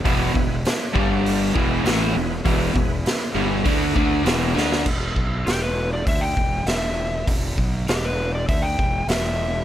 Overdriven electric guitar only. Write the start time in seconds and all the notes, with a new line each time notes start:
0.05 E2 B2 E3
0.34 E2 B2
0.94 G2 D3 G3
1.54 E2 B2 E3
1.85 A2 E3 A3
2.15 E2 B2
2.44 E2 B2 E3
2.73 E2 B2
3.35 G2 D3 G3
3.64 D3 A3 D4
3.94 D3 A3 D4
4.24 E2 B2 E3
4.54 D3 A3 D4